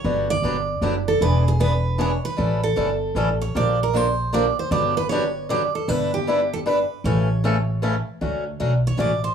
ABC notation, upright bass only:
X:1
M:3/4
L:1/8
Q:"Swing" 1/4=154
K:D
V:1 name="Upright bass" clef=bass
G,,,2 G,,,2 F,,,2 | E,,,6 | A,,,2 G,,,2 A,,,2 | _B,,,6 |
G,,,6 | G,,,6 | A,,,6 | D,,2 B,,,2 A,,,2 |]